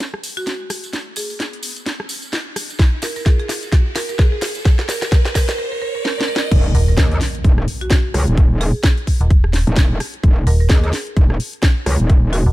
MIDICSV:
0, 0, Header, 1, 7, 480
1, 0, Start_track
1, 0, Key_signature, -6, "minor"
1, 0, Tempo, 465116
1, 963, Time_signature, 4, 2, 24, 8
1, 12926, End_track
2, 0, Start_track
2, 0, Title_t, "Marimba"
2, 0, Program_c, 0, 12
2, 383, Note_on_c, 0, 66, 88
2, 491, Note_off_c, 0, 66, 0
2, 1204, Note_on_c, 0, 68, 82
2, 1684, Note_off_c, 0, 68, 0
2, 3125, Note_on_c, 0, 70, 79
2, 3213, Note_off_c, 0, 70, 0
2, 3263, Note_on_c, 0, 70, 68
2, 3327, Note_off_c, 0, 70, 0
2, 3365, Note_on_c, 0, 68, 79
2, 3453, Note_off_c, 0, 68, 0
2, 3504, Note_on_c, 0, 68, 72
2, 3568, Note_off_c, 0, 68, 0
2, 4082, Note_on_c, 0, 70, 86
2, 4172, Note_off_c, 0, 70, 0
2, 4220, Note_on_c, 0, 70, 72
2, 4286, Note_off_c, 0, 70, 0
2, 4325, Note_on_c, 0, 68, 83
2, 4413, Note_off_c, 0, 68, 0
2, 4462, Note_on_c, 0, 68, 76
2, 4527, Note_off_c, 0, 68, 0
2, 5041, Note_on_c, 0, 70, 87
2, 5131, Note_off_c, 0, 70, 0
2, 5181, Note_on_c, 0, 70, 75
2, 5246, Note_off_c, 0, 70, 0
2, 5522, Note_on_c, 0, 70, 88
2, 5611, Note_off_c, 0, 70, 0
2, 5660, Note_on_c, 0, 70, 78
2, 5726, Note_off_c, 0, 70, 0
2, 5762, Note_on_c, 0, 70, 90
2, 5852, Note_off_c, 0, 70, 0
2, 5902, Note_on_c, 0, 70, 77
2, 5967, Note_off_c, 0, 70, 0
2, 6003, Note_on_c, 0, 70, 90
2, 6092, Note_off_c, 0, 70, 0
2, 6142, Note_on_c, 0, 70, 80
2, 6206, Note_off_c, 0, 70, 0
2, 6243, Note_on_c, 0, 70, 94
2, 6332, Note_off_c, 0, 70, 0
2, 6381, Note_on_c, 0, 70, 82
2, 6446, Note_off_c, 0, 70, 0
2, 6483, Note_on_c, 0, 70, 96
2, 6572, Note_off_c, 0, 70, 0
2, 6621, Note_on_c, 0, 70, 79
2, 6686, Note_off_c, 0, 70, 0
2, 6964, Note_on_c, 0, 70, 87
2, 7052, Note_off_c, 0, 70, 0
2, 7104, Note_on_c, 0, 70, 80
2, 7168, Note_off_c, 0, 70, 0
2, 8064, Note_on_c, 0, 66, 90
2, 8171, Note_off_c, 0, 66, 0
2, 8884, Note_on_c, 0, 68, 89
2, 9363, Note_off_c, 0, 68, 0
2, 10803, Note_on_c, 0, 70, 89
2, 10892, Note_off_c, 0, 70, 0
2, 10942, Note_on_c, 0, 70, 76
2, 11007, Note_off_c, 0, 70, 0
2, 11043, Note_on_c, 0, 68, 92
2, 11132, Note_off_c, 0, 68, 0
2, 11183, Note_on_c, 0, 68, 79
2, 11247, Note_off_c, 0, 68, 0
2, 12722, Note_on_c, 0, 66, 90
2, 12926, Note_off_c, 0, 66, 0
2, 12926, End_track
3, 0, Start_track
3, 0, Title_t, "FM bass"
3, 0, Program_c, 1, 39
3, 6963, Note_on_c, 1, 27, 96
3, 7187, Note_off_c, 1, 27, 0
3, 9501, Note_on_c, 1, 27, 98
3, 9960, Note_off_c, 1, 27, 0
3, 10804, Note_on_c, 1, 27, 98
3, 11027, Note_off_c, 1, 27, 0
3, 12862, Note_on_c, 1, 27, 98
3, 12926, Note_off_c, 1, 27, 0
3, 12926, End_track
4, 0, Start_track
4, 0, Title_t, "Wobble bass"
4, 0, Program_c, 2, 39
4, 6723, Note_on_c, 2, 27, 95
4, 6947, Note_off_c, 2, 27, 0
4, 7203, Note_on_c, 2, 39, 94
4, 7427, Note_off_c, 2, 39, 0
4, 7683, Note_on_c, 2, 27, 98
4, 7907, Note_off_c, 2, 27, 0
4, 8403, Note_on_c, 2, 37, 99
4, 8520, Note_off_c, 2, 37, 0
4, 8541, Note_on_c, 2, 27, 101
4, 8999, Note_off_c, 2, 27, 0
4, 9982, Note_on_c, 2, 27, 97
4, 10307, Note_off_c, 2, 27, 0
4, 10562, Note_on_c, 2, 27, 101
4, 10787, Note_off_c, 2, 27, 0
4, 11043, Note_on_c, 2, 39, 100
4, 11267, Note_off_c, 2, 39, 0
4, 11523, Note_on_c, 2, 27, 98
4, 11747, Note_off_c, 2, 27, 0
4, 12243, Note_on_c, 2, 37, 96
4, 12359, Note_off_c, 2, 37, 0
4, 12380, Note_on_c, 2, 27, 102
4, 12839, Note_off_c, 2, 27, 0
4, 12926, End_track
5, 0, Start_track
5, 0, Title_t, "Impact"
5, 0, Program_c, 3, 103
5, 6723, Note_on_c, 3, 60, 76
5, 8643, Note_off_c, 3, 60, 0
5, 12926, End_track
6, 0, Start_track
6, 0, Title_t, "Riser"
6, 0, Program_c, 4, 103
6, 0, Note_on_c, 4, 60, 73
6, 6723, Note_off_c, 4, 60, 0
6, 12926, End_track
7, 0, Start_track
7, 0, Title_t, "Drums"
7, 1, Note_on_c, 9, 54, 37
7, 4, Note_on_c, 9, 38, 51
7, 4, Note_on_c, 9, 42, 62
7, 105, Note_off_c, 9, 54, 0
7, 107, Note_off_c, 9, 38, 0
7, 107, Note_off_c, 9, 42, 0
7, 142, Note_on_c, 9, 37, 55
7, 242, Note_on_c, 9, 54, 79
7, 243, Note_on_c, 9, 46, 101
7, 245, Note_off_c, 9, 37, 0
7, 345, Note_off_c, 9, 54, 0
7, 346, Note_off_c, 9, 46, 0
7, 383, Note_on_c, 9, 42, 49
7, 383, Note_on_c, 9, 54, 44
7, 479, Note_off_c, 9, 54, 0
7, 479, Note_on_c, 9, 54, 36
7, 484, Note_off_c, 9, 42, 0
7, 484, Note_on_c, 9, 38, 54
7, 484, Note_on_c, 9, 42, 66
7, 582, Note_off_c, 9, 54, 0
7, 587, Note_off_c, 9, 38, 0
7, 587, Note_off_c, 9, 42, 0
7, 722, Note_on_c, 9, 54, 84
7, 723, Note_on_c, 9, 37, 61
7, 723, Note_on_c, 9, 46, 102
7, 825, Note_off_c, 9, 54, 0
7, 827, Note_off_c, 9, 37, 0
7, 827, Note_off_c, 9, 46, 0
7, 863, Note_on_c, 9, 42, 51
7, 865, Note_on_c, 9, 54, 47
7, 959, Note_off_c, 9, 54, 0
7, 959, Note_on_c, 9, 54, 36
7, 964, Note_off_c, 9, 42, 0
7, 964, Note_on_c, 9, 38, 55
7, 964, Note_on_c, 9, 42, 63
7, 1062, Note_off_c, 9, 54, 0
7, 1067, Note_off_c, 9, 38, 0
7, 1067, Note_off_c, 9, 42, 0
7, 1197, Note_on_c, 9, 54, 91
7, 1203, Note_on_c, 9, 46, 100
7, 1300, Note_off_c, 9, 54, 0
7, 1307, Note_off_c, 9, 46, 0
7, 1341, Note_on_c, 9, 54, 50
7, 1444, Note_off_c, 9, 54, 0
7, 1444, Note_on_c, 9, 38, 59
7, 1444, Note_on_c, 9, 42, 65
7, 1446, Note_on_c, 9, 54, 37
7, 1547, Note_off_c, 9, 38, 0
7, 1547, Note_off_c, 9, 42, 0
7, 1549, Note_off_c, 9, 54, 0
7, 1583, Note_on_c, 9, 42, 52
7, 1678, Note_on_c, 9, 54, 101
7, 1683, Note_on_c, 9, 46, 105
7, 1686, Note_off_c, 9, 42, 0
7, 1781, Note_off_c, 9, 54, 0
7, 1786, Note_off_c, 9, 46, 0
7, 1820, Note_on_c, 9, 54, 51
7, 1823, Note_on_c, 9, 42, 51
7, 1920, Note_off_c, 9, 54, 0
7, 1920, Note_on_c, 9, 54, 36
7, 1924, Note_off_c, 9, 42, 0
7, 1924, Note_on_c, 9, 38, 63
7, 1924, Note_on_c, 9, 42, 65
7, 2024, Note_off_c, 9, 54, 0
7, 2027, Note_off_c, 9, 38, 0
7, 2027, Note_off_c, 9, 42, 0
7, 2063, Note_on_c, 9, 37, 57
7, 2156, Note_on_c, 9, 54, 88
7, 2163, Note_on_c, 9, 46, 105
7, 2166, Note_off_c, 9, 37, 0
7, 2259, Note_off_c, 9, 54, 0
7, 2267, Note_off_c, 9, 46, 0
7, 2291, Note_on_c, 9, 54, 51
7, 2303, Note_on_c, 9, 42, 50
7, 2394, Note_off_c, 9, 54, 0
7, 2396, Note_on_c, 9, 54, 37
7, 2404, Note_off_c, 9, 42, 0
7, 2404, Note_on_c, 9, 38, 71
7, 2404, Note_on_c, 9, 42, 65
7, 2500, Note_off_c, 9, 54, 0
7, 2507, Note_off_c, 9, 38, 0
7, 2507, Note_off_c, 9, 42, 0
7, 2643, Note_on_c, 9, 37, 62
7, 2643, Note_on_c, 9, 46, 109
7, 2644, Note_on_c, 9, 54, 96
7, 2747, Note_off_c, 9, 37, 0
7, 2747, Note_off_c, 9, 46, 0
7, 2747, Note_off_c, 9, 54, 0
7, 2783, Note_on_c, 9, 42, 52
7, 2786, Note_on_c, 9, 54, 58
7, 2880, Note_off_c, 9, 54, 0
7, 2880, Note_on_c, 9, 54, 41
7, 2882, Note_on_c, 9, 36, 127
7, 2884, Note_off_c, 9, 42, 0
7, 2884, Note_on_c, 9, 38, 71
7, 2884, Note_on_c, 9, 42, 60
7, 2983, Note_off_c, 9, 54, 0
7, 2985, Note_off_c, 9, 36, 0
7, 2988, Note_off_c, 9, 38, 0
7, 2988, Note_off_c, 9, 42, 0
7, 3115, Note_on_c, 9, 54, 90
7, 3124, Note_on_c, 9, 38, 74
7, 3124, Note_on_c, 9, 46, 100
7, 3218, Note_off_c, 9, 54, 0
7, 3227, Note_off_c, 9, 38, 0
7, 3227, Note_off_c, 9, 46, 0
7, 3258, Note_on_c, 9, 54, 53
7, 3361, Note_off_c, 9, 54, 0
7, 3362, Note_on_c, 9, 36, 117
7, 3363, Note_on_c, 9, 38, 75
7, 3363, Note_on_c, 9, 42, 64
7, 3466, Note_off_c, 9, 36, 0
7, 3467, Note_off_c, 9, 38, 0
7, 3467, Note_off_c, 9, 42, 0
7, 3503, Note_on_c, 9, 42, 49
7, 3604, Note_on_c, 9, 38, 78
7, 3604, Note_on_c, 9, 46, 110
7, 3606, Note_off_c, 9, 42, 0
7, 3607, Note_on_c, 9, 54, 89
7, 3707, Note_off_c, 9, 38, 0
7, 3707, Note_off_c, 9, 46, 0
7, 3711, Note_off_c, 9, 54, 0
7, 3743, Note_on_c, 9, 42, 50
7, 3745, Note_on_c, 9, 54, 52
7, 3843, Note_off_c, 9, 42, 0
7, 3843, Note_on_c, 9, 36, 119
7, 3843, Note_on_c, 9, 38, 81
7, 3843, Note_on_c, 9, 42, 60
7, 3846, Note_off_c, 9, 54, 0
7, 3846, Note_on_c, 9, 54, 38
7, 3946, Note_off_c, 9, 36, 0
7, 3947, Note_off_c, 9, 38, 0
7, 3947, Note_off_c, 9, 42, 0
7, 3950, Note_off_c, 9, 54, 0
7, 4082, Note_on_c, 9, 54, 84
7, 4083, Note_on_c, 9, 38, 83
7, 4083, Note_on_c, 9, 46, 108
7, 4185, Note_off_c, 9, 54, 0
7, 4186, Note_off_c, 9, 38, 0
7, 4186, Note_off_c, 9, 46, 0
7, 4223, Note_on_c, 9, 42, 51
7, 4223, Note_on_c, 9, 54, 47
7, 4322, Note_off_c, 9, 54, 0
7, 4322, Note_on_c, 9, 54, 38
7, 4323, Note_off_c, 9, 42, 0
7, 4323, Note_on_c, 9, 36, 127
7, 4323, Note_on_c, 9, 38, 86
7, 4323, Note_on_c, 9, 42, 62
7, 4425, Note_off_c, 9, 54, 0
7, 4426, Note_off_c, 9, 36, 0
7, 4427, Note_off_c, 9, 38, 0
7, 4427, Note_off_c, 9, 42, 0
7, 4554, Note_on_c, 9, 54, 94
7, 4562, Note_on_c, 9, 38, 93
7, 4562, Note_on_c, 9, 46, 115
7, 4657, Note_off_c, 9, 54, 0
7, 4665, Note_off_c, 9, 38, 0
7, 4665, Note_off_c, 9, 46, 0
7, 4693, Note_on_c, 9, 54, 55
7, 4702, Note_on_c, 9, 42, 50
7, 4796, Note_off_c, 9, 54, 0
7, 4803, Note_off_c, 9, 42, 0
7, 4803, Note_on_c, 9, 36, 127
7, 4803, Note_on_c, 9, 38, 88
7, 4803, Note_on_c, 9, 42, 62
7, 4906, Note_off_c, 9, 36, 0
7, 4906, Note_off_c, 9, 38, 0
7, 4906, Note_off_c, 9, 42, 0
7, 4942, Note_on_c, 9, 38, 81
7, 5043, Note_off_c, 9, 38, 0
7, 5043, Note_on_c, 9, 38, 89
7, 5043, Note_on_c, 9, 46, 105
7, 5050, Note_on_c, 9, 54, 101
7, 5146, Note_off_c, 9, 38, 0
7, 5146, Note_off_c, 9, 46, 0
7, 5154, Note_off_c, 9, 54, 0
7, 5180, Note_on_c, 9, 54, 59
7, 5182, Note_on_c, 9, 38, 84
7, 5283, Note_off_c, 9, 38, 0
7, 5283, Note_off_c, 9, 54, 0
7, 5283, Note_on_c, 9, 36, 126
7, 5283, Note_on_c, 9, 38, 98
7, 5283, Note_on_c, 9, 42, 65
7, 5284, Note_on_c, 9, 54, 39
7, 5386, Note_off_c, 9, 36, 0
7, 5386, Note_off_c, 9, 38, 0
7, 5386, Note_off_c, 9, 42, 0
7, 5387, Note_off_c, 9, 54, 0
7, 5423, Note_on_c, 9, 38, 82
7, 5423, Note_on_c, 9, 42, 50
7, 5523, Note_off_c, 9, 38, 0
7, 5523, Note_on_c, 9, 36, 65
7, 5523, Note_on_c, 9, 38, 98
7, 5523, Note_on_c, 9, 46, 106
7, 5526, Note_off_c, 9, 42, 0
7, 5526, Note_on_c, 9, 54, 98
7, 5626, Note_off_c, 9, 36, 0
7, 5627, Note_off_c, 9, 38, 0
7, 5627, Note_off_c, 9, 46, 0
7, 5629, Note_off_c, 9, 54, 0
7, 5662, Note_on_c, 9, 38, 89
7, 5664, Note_on_c, 9, 54, 49
7, 5766, Note_off_c, 9, 38, 0
7, 5767, Note_off_c, 9, 54, 0
7, 6244, Note_on_c, 9, 38, 71
7, 6347, Note_off_c, 9, 38, 0
7, 6404, Note_on_c, 9, 38, 82
7, 6507, Note_off_c, 9, 38, 0
7, 6564, Note_on_c, 9, 38, 103
7, 6667, Note_off_c, 9, 38, 0
7, 6723, Note_on_c, 9, 36, 118
7, 6724, Note_on_c, 9, 42, 67
7, 6724, Note_on_c, 9, 49, 106
7, 6826, Note_off_c, 9, 36, 0
7, 6827, Note_off_c, 9, 42, 0
7, 6827, Note_off_c, 9, 49, 0
7, 6964, Note_on_c, 9, 46, 103
7, 7067, Note_off_c, 9, 46, 0
7, 7198, Note_on_c, 9, 38, 127
7, 7203, Note_on_c, 9, 36, 120
7, 7204, Note_on_c, 9, 42, 69
7, 7301, Note_off_c, 9, 38, 0
7, 7306, Note_off_c, 9, 36, 0
7, 7307, Note_off_c, 9, 42, 0
7, 7343, Note_on_c, 9, 42, 55
7, 7438, Note_on_c, 9, 38, 63
7, 7444, Note_on_c, 9, 46, 106
7, 7446, Note_off_c, 9, 42, 0
7, 7541, Note_off_c, 9, 38, 0
7, 7547, Note_off_c, 9, 46, 0
7, 7583, Note_on_c, 9, 42, 56
7, 7683, Note_off_c, 9, 42, 0
7, 7683, Note_on_c, 9, 36, 120
7, 7683, Note_on_c, 9, 42, 69
7, 7786, Note_off_c, 9, 36, 0
7, 7787, Note_off_c, 9, 42, 0
7, 7822, Note_on_c, 9, 37, 58
7, 7924, Note_on_c, 9, 46, 108
7, 7926, Note_off_c, 9, 37, 0
7, 8027, Note_off_c, 9, 46, 0
7, 8063, Note_on_c, 9, 42, 54
7, 8157, Note_on_c, 9, 38, 126
7, 8163, Note_off_c, 9, 42, 0
7, 8163, Note_on_c, 9, 36, 127
7, 8163, Note_on_c, 9, 42, 69
7, 8261, Note_off_c, 9, 38, 0
7, 8266, Note_off_c, 9, 36, 0
7, 8267, Note_off_c, 9, 42, 0
7, 8404, Note_on_c, 9, 37, 65
7, 8404, Note_on_c, 9, 46, 111
7, 8507, Note_off_c, 9, 37, 0
7, 8507, Note_off_c, 9, 46, 0
7, 8543, Note_on_c, 9, 42, 54
7, 8643, Note_off_c, 9, 42, 0
7, 8643, Note_on_c, 9, 36, 127
7, 8643, Note_on_c, 9, 42, 66
7, 8746, Note_off_c, 9, 36, 0
7, 8747, Note_off_c, 9, 42, 0
7, 8883, Note_on_c, 9, 46, 103
7, 8987, Note_off_c, 9, 46, 0
7, 9118, Note_on_c, 9, 38, 127
7, 9123, Note_on_c, 9, 36, 123
7, 9124, Note_on_c, 9, 42, 68
7, 9221, Note_off_c, 9, 38, 0
7, 9226, Note_off_c, 9, 36, 0
7, 9227, Note_off_c, 9, 42, 0
7, 9262, Note_on_c, 9, 42, 53
7, 9363, Note_on_c, 9, 36, 65
7, 9363, Note_on_c, 9, 46, 105
7, 9365, Note_off_c, 9, 42, 0
7, 9466, Note_off_c, 9, 36, 0
7, 9466, Note_off_c, 9, 46, 0
7, 9502, Note_on_c, 9, 42, 53
7, 9603, Note_off_c, 9, 42, 0
7, 9603, Note_on_c, 9, 36, 124
7, 9603, Note_on_c, 9, 42, 66
7, 9706, Note_off_c, 9, 36, 0
7, 9706, Note_off_c, 9, 42, 0
7, 9742, Note_on_c, 9, 37, 58
7, 9837, Note_on_c, 9, 38, 64
7, 9843, Note_on_c, 9, 46, 115
7, 9845, Note_off_c, 9, 37, 0
7, 9940, Note_off_c, 9, 38, 0
7, 9946, Note_off_c, 9, 46, 0
7, 9982, Note_on_c, 9, 42, 52
7, 10077, Note_on_c, 9, 38, 127
7, 10082, Note_off_c, 9, 42, 0
7, 10082, Note_on_c, 9, 42, 67
7, 10083, Note_on_c, 9, 36, 127
7, 10180, Note_off_c, 9, 38, 0
7, 10186, Note_off_c, 9, 36, 0
7, 10186, Note_off_c, 9, 42, 0
7, 10322, Note_on_c, 9, 37, 66
7, 10322, Note_on_c, 9, 46, 109
7, 10425, Note_off_c, 9, 37, 0
7, 10425, Note_off_c, 9, 46, 0
7, 10462, Note_on_c, 9, 42, 53
7, 10563, Note_off_c, 9, 42, 0
7, 10563, Note_on_c, 9, 36, 127
7, 10563, Note_on_c, 9, 42, 64
7, 10666, Note_off_c, 9, 36, 0
7, 10666, Note_off_c, 9, 42, 0
7, 10803, Note_on_c, 9, 46, 108
7, 10906, Note_off_c, 9, 46, 0
7, 11037, Note_on_c, 9, 38, 120
7, 11043, Note_on_c, 9, 36, 125
7, 11043, Note_on_c, 9, 42, 68
7, 11140, Note_off_c, 9, 38, 0
7, 11146, Note_off_c, 9, 36, 0
7, 11146, Note_off_c, 9, 42, 0
7, 11182, Note_on_c, 9, 42, 52
7, 11277, Note_on_c, 9, 38, 62
7, 11283, Note_on_c, 9, 46, 111
7, 11285, Note_off_c, 9, 42, 0
7, 11380, Note_off_c, 9, 38, 0
7, 11386, Note_off_c, 9, 46, 0
7, 11421, Note_on_c, 9, 42, 52
7, 11523, Note_off_c, 9, 42, 0
7, 11523, Note_on_c, 9, 36, 127
7, 11523, Note_on_c, 9, 42, 63
7, 11626, Note_off_c, 9, 36, 0
7, 11626, Note_off_c, 9, 42, 0
7, 11662, Note_on_c, 9, 37, 60
7, 11764, Note_on_c, 9, 46, 111
7, 11765, Note_off_c, 9, 37, 0
7, 11867, Note_off_c, 9, 46, 0
7, 11903, Note_on_c, 9, 42, 52
7, 11998, Note_on_c, 9, 38, 124
7, 12003, Note_on_c, 9, 36, 127
7, 12004, Note_off_c, 9, 42, 0
7, 12004, Note_on_c, 9, 42, 64
7, 12101, Note_off_c, 9, 38, 0
7, 12106, Note_off_c, 9, 36, 0
7, 12107, Note_off_c, 9, 42, 0
7, 12243, Note_on_c, 9, 37, 67
7, 12243, Note_on_c, 9, 46, 117
7, 12346, Note_off_c, 9, 37, 0
7, 12346, Note_off_c, 9, 46, 0
7, 12382, Note_on_c, 9, 42, 50
7, 12483, Note_off_c, 9, 42, 0
7, 12483, Note_on_c, 9, 36, 127
7, 12483, Note_on_c, 9, 42, 64
7, 12586, Note_off_c, 9, 36, 0
7, 12586, Note_off_c, 9, 42, 0
7, 12723, Note_on_c, 9, 46, 106
7, 12826, Note_off_c, 9, 46, 0
7, 12926, End_track
0, 0, End_of_file